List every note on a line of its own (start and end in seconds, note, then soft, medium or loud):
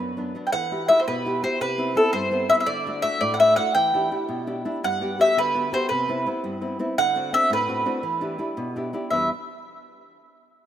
0.00 0.34 F#2 medium
0.00 0.10 F#3 soft
0.00 0.10 B3 soft
0.00 0.11 D4 soft
0.00 0.14 B4 medium
0.17 0.34 F#3 soft
0.17 0.34 B3 soft
0.17 0.35 D4 soft
0.35 0.50 F#3 soft
0.35 0.50 B3 soft
0.35 0.50 D4 soft
0.47 0.52 G5 soft
0.52 0.89 E3 medium
0.52 0.87 F#5 loud
0.72 0.88 E4 soft
0.72 0.88 F#4 soft
0.72 0.89 G4 medium
0.88 1.19 E4 soft
0.88 1.19 F#4 soft
0.88 1.19 G4 soft
0.88 0.99 E5 medium
1.00 1.07 C5 soft
1.08 1.43 B2 medium
1.08 1.43 B4 medium
1.25 1.41 E4 soft
1.25 1.42 F#4 soft
1.25 1.43 G4 medium
1.43 1.57 E4 soft
1.43 1.58 F#4 soft
1.43 1.58 G4 medium
1.43 1.60 C5 medium
1.61 1.96 C3 medium
1.61 1.97 B4 medium
1.78 1.94 B3 soft
1.78 1.94 C4 soft
1.78 1.95 E4 soft
1.95 2.24 B3 soft
1.95 2.25 C4 soft
1.95 2.25 E4 soft
1.95 2.12 A4 medium
2.13 2.49 G2 medium
2.13 2.51 C5 medium
2.31 2.48 B3 medium
2.31 2.48 C4 soft
2.31 2.48 E4 medium
2.49 2.63 B3 soft
2.49 2.63 C4 soft
2.49 2.64 E4 medium
2.49 2.55 E5 loud
2.60 2.67 E5 medium
2.66 3.02 D3 medium
2.66 3.00 D5 medium
2.86 3.02 A3 soft
2.86 3.02 D4 soft
2.86 3.03 F#4 medium
3.02 3.32 A3 soft
3.02 3.32 D4 soft
3.02 3.33 F#4 soft
3.02 3.21 E5 loud
3.21 3.56 A2 medium
3.21 3.34 D5 medium
3.34 3.39 F#5 medium
3.40 3.55 A3 soft
3.40 3.56 D4 soft
3.40 3.57 F#4 medium
3.40 3.56 E5 medium
3.56 3.71 A3 soft
3.56 3.71 D4 soft
3.56 3.71 F#4 medium
3.56 3.73 F#5 medium
3.75 4.10 E3 medium
3.75 4.12 G5 loud
3.94 4.10 D4 soft
3.94 4.10 E4 soft
3.94 4.11 G4 medium
4.11 4.40 D4 soft
4.11 4.40 E4 soft
4.11 4.41 G4 soft
4.29 4.64 B2 medium
4.47 4.64 D4 soft
4.47 4.64 E4 soft
4.47 4.64 G4 medium
4.65 4.79 D4 medium
4.65 4.79 E4 soft
4.65 4.80 G4 soft
4.84 5.19 G2 medium
4.84 5.18 F#5 loud
5.01 5.17 B3 soft
5.01 5.18 F#4 soft
5.01 5.18 G4 medium
5.18 5.48 B3 soft
5.18 5.48 F#4 soft
5.18 5.48 G4 medium
5.18 5.38 E5 medium
5.37 5.72 D3 medium
5.37 5.73 B4 medium
5.54 5.71 B3 soft
5.54 5.72 F#4 soft
5.54 5.72 G4 soft
5.72 5.86 B3 soft
5.72 5.87 F#4 soft
5.72 5.87 G4 medium
5.72 5.88 C5 medium
5.89 6.25 C3 medium
5.89 6.27 B4 medium
6.08 6.25 B3 soft
6.08 6.26 C4 soft
6.08 6.26 E4 medium
6.26 6.55 B3 soft
6.26 6.55 C4 soft
6.26 6.55 E4 soft
6.44 6.78 G2 medium
6.61 6.78 B3 soft
6.61 6.79 C4 soft
6.61 6.79 E4 medium
6.79 6.93 B3 medium
6.79 6.94 C4 soft
6.79 6.94 E4 soft
6.98 7.32 D3 medium
6.98 7.31 F#5 loud
7.16 7.31 C4 medium
7.16 7.32 D4 medium
7.16 7.33 F#4 medium
7.33 7.61 C4 medium
7.33 7.61 D4 soft
7.33 7.62 F#4 soft
7.33 7.49 E5 loud
7.50 7.85 A2 medium
7.50 8.74 B4 medium
7.68 7.84 C4 soft
7.68 7.85 D4 soft
7.68 7.85 F#4 soft
7.85 7.99 C4 medium
7.85 8.00 D4 soft
7.85 8.00 F#4 medium
8.03 8.38 E3 medium
8.21 8.37 D4 soft
8.21 8.37 E4 medium
8.21 8.38 G4 soft
8.38 8.68 D4 soft
8.38 8.68 E4 soft
8.38 8.69 G4 medium
8.57 8.93 B2 medium
8.76 8.92 D4 soft
8.76 8.92 E4 soft
8.76 8.93 G4 medium
8.93 9.08 D4 soft
8.93 9.08 E4 soft
8.93 9.08 G4 medium
9.11 9.29 E2 medium
9.11 9.29 B2 soft
9.11 9.29 G3 soft
9.11 9.29 D4 soft
9.11 9.30 E4 soft
9.11 9.30 B4 medium
9.11 9.29 E5 medium